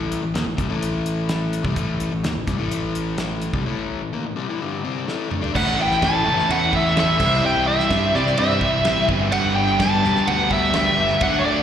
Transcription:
Already playing: A1 A2 E3 A3
0.12 closed hi-hat
0.22 A1 A2 E3
0.34 D#2 D#3 A#3, snare, closed hi-hat
0.46 A1 A2 E3
0.57 C2 C3 G3, kick, closed hi-hat
0.69 A1 A2 E3 A3
0.83 closed hi-hat
1.06 closed hi-hat
1.29 snare, closed hi-hat
1.53 closed hi-hat
1.63 C2 C3 G3, kick
1.76 A1 A2 E3 A3, kick, closed hi-hat
2.00 closed hi-hat
2.12 A1 A2 E3
2.24 D#2 D#3 A#3, snare, closed hi-hat
2.35 A1 A2 E3
2.47 C2 C3 G3, kick, snare, closed hi-hat
2.57 A1 A2 E3 A3
2.72 closed hi-hat
2.95 closed hi-hat
3.18 snare, closed hi-hat
3.42 closed hi-hat
3.53 C2 C3 G3, kick
3.65 A2 E3 A3
4.02 A2 E3
4.13 D#3 A#3
4.26 A2 E3
4.36 C3 G3
4.48 A2 E3
4.61 G2 D3 G3
4.84 C3 G3 C4
5.07 A2 E3 A3, snare
5.30 D3 A3, mid tom
5.41 G3 D4, floor tom
5.52 A1 A2 E3 A3 C#4 E4 C#5, kick, crash
5.56 E3 A3 F#5
5.67 A1
5.76 A3 C#4 E4
5.82 G5
5.91 snare
6.01 A2 E3 A3 C#4 E4 A5, kick, snare, ride bell
6.24 F#1 A3 C#4 E4
6.39 snare
6.47 E2 A2 E3 A3 C#4 E4 F#5, ride bell
6.71 A3 C#4 E4, kick
6.76 E5
6.95 A2 E3 A3 C#4 E4, snare, ride bell
7.00 E5
7.18 C2 C3 E3 G3 C4 E4 C5, kick, crash
7.43 C3 E3 G3 C4 E4 G5
7.56 C2
7.66 G3 C4 E4 E5
7.80 snare
7.89 G2 C3 E3 G3 C4 E4, kick, snare, ride bell
8.13 C3 G3 C4 E4 D5, snare
8.18 C3
8.26 snare
8.38 G2 C3 E3 G3 C4 E4 E5, ride bell
8.59 C2 G3 C4 E4, kick
8.84 A1 C3 E3 G3 C4 E4, snare, ride bell
9.07 G1 G2 D3 G3 B3 C4 D4 G4 G#4 D#5, kick
9.23 B3 G4 D5
9.31 G2 D3 G3 B3 D4 G4 F#5, ride bell
9.45 G1
9.54 G3 B3 D4 G4 G5
9.78 G2 D3 G3 B3 D4 G4 A5, kick, snare, ride bell
10.01 E1 G3 B3 D4 G4, snare
10.06 G2 D3
10.16 snare
10.26 D2 G2 D3 G3 B3 D4 G4 F#5, ride bell
10.49 G3 B3 D4 E5, kick
10.73 G2 D3 G3 B3 D4 G4 E5, snare, ride bell
10.97 G1 G3 B3 D4 G4
11.20 D2 D3 F#3 A3 D4 F#4 D5 F#5, kick, ride bell
11.33 D2
11.39 C#5
11.43 F#3 A3 D4 F#4 D5

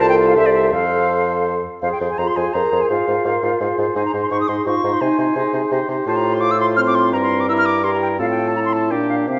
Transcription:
0.00 C2 F4 A4 C5
0.09 G5
0.27 F5
0.36 C2 G4 C5 E5
0.46 D5
0.53 E5
0.72 F2 A4 C5 F5
1.82 F2 G#4 C5 F5
1.92 G5
2.00 F2 G#4 C5
2.10 G#5
2.18 F2 F4 G#4 C5 A#5
2.27 C6
2.36 F2 G#4 C5 G#5
2.54 F2 G#4 A#4 C5 A#5
2.71 F2 G#4 C5
2.81 G#5
2.90 G#2 F4 G#4 C5 F5
3.07 G#2 F4 C5
3.25 G#2 F4 A#4 C5
3.43 G#2 F4 C5
3.60 G#2 F4 G#4 C5
3.78 G#2 F4 C5
3.96 G#2 D#4 C5 G#5
4.05 A#5
4.14 G#2 D#4 C5
4.23 C6
4.31 G#2 D#4 C5 C#6
4.41 D#6
4.48 G#2 D#4 C5 C6
4.66 G#2 D#4 F4 C5 C#6
4.84 G#2 D#4 C5
4.94 C6
5.01 C3 D#4 C5 G#5
5.19 C3 D#4 C5
5.36 C3 D#4 G#4 C5
5.53 C3 D#4 C5
5.71 C3 D#4 G4 C5
5.88 C3 D#4 C5
6.07 A2 F4 C5 A5
6.16 A#5
6.34 C6
6.41 F4 D6
6.51 E6
6.60 C6
6.76 C4 F4 C5 F6
6.87 D6
6.95 C6
7.13 G2 E4 A#4 A#5
7.22 C6
7.40 D6
7.49 E4 A#4 E6
7.58 F6
7.66 D6
7.83 E4 G4 A#4 C6
7.94 A#5
8.02 G5
8.19 A2 C4 F4 A4 F5
8.30 G5
8.48 A5
8.55 E4 A#5
8.65 C6
8.73 A5
8.91 A#2 D4 G4 G5
9.09 F5
9.28 C3 C4 G4 F5

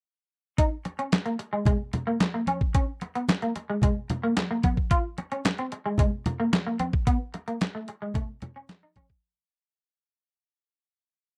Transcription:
0.58 D#4, kick, closed hi-hat
0.85 muted clean electric guitar stroke, closed hi-hat, muted conga
0.99 C#4, closed hi-hat
1.12 snare, clap, closed hi-hat, high conga
1.26 A#3, closed hi-hat
1.39 muted clean electric guitar stroke, closed hi-hat
1.53 G#3
1.65 G#3, kick, closed hi-hat, low conga
1.93 muted clean electric guitar stroke, closed hi-hat, muted conga, low conga
2.07 A#3
2.20 muted clean electric guitar stroke, snare, clap, closed hi-hat, high conga
2.34 A#3
2.47 C#4, closed hi-hat, high conga
2.61 kick
2.75 C#4, kick, closed hi-hat
3.01 muted clean electric guitar stroke, closed hi-hat, muted conga
3.15 B3, closed hi-hat
3.29 snare, clap, closed hi-hat, high conga
3.42 A#3, closed hi-hat
3.56 muted clean electric guitar stroke, closed hi-hat, muted conga
3.70 G#3
3.82 G#3, kick, closed hi-hat, low conga
4.10 muted clean electric guitar stroke, closed hi-hat, muted conga, low conga
4.23 A#3
4.37 muted clean electric guitar stroke, snare, clap, closed hi-hat, high conga
4.51 A#3
4.63 B3, kick, closed hi-hat, high conga
4.77 kick
4.91 F4, kick, closed hi-hat
5.18 muted clean electric guitar stroke, closed hi-hat, muted conga
5.32 C#4, closed hi-hat
5.45 snare, clap, closed hi-hat, high conga
5.58 C4, closed hi-hat
5.72 muted clean electric guitar stroke, closed hi-hat
5.86 G#3
5.98 G#3, kick, closed hi-hat, low conga
6.26 muted clean electric guitar stroke, closed hi-hat, muted conga, low conga
6.40 A#3
6.53 muted clean electric guitar stroke, snare, clap, closed hi-hat, high conga
6.67 A#3
6.79 C4, closed hi-hat, high conga
6.93 kick
7.07 B3, kick, closed hi-hat
7.34 muted clean electric guitar stroke, closed hi-hat, muted conga
7.48 A#3, closed hi-hat
7.61 snare, clap, closed hi-hat, high conga
7.75 A3
7.88 muted clean electric guitar stroke, closed hi-hat
8.02 G#3
8.14 A3, kick, closed hi-hat, low conga
8.42 muted clean electric guitar stroke, closed hi-hat, muted conga, low conga
8.56 C#4
8.69 muted clean electric guitar stroke, snare, clap, closed hi-hat, high conga
8.83 D#4
8.96 C#4, kick, closed hi-hat, high conga
9.10 kick

